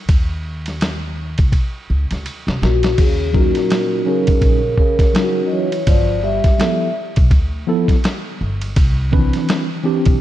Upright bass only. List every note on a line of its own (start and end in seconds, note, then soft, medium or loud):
0.09 1.34 D#2 medium
1.39 1.52 C2 medium
1.90 2.08 C#2 medium
2.11 2.24 C#2 medium
2.47 2.60 C2 medium
2.62 2.94 A#1 medium
2.98 3.49 D#2 medium
4.28 4.41 C#2 medium
4.42 4.74 A#1 medium
5.87 6.38 G1 medium
7.17 7.30 B1 medium
7.31 7.63 D2 loud
8.41 8.73 G1 medium
8.77 9.27 C2 medium
10.07 10.21 B1 loud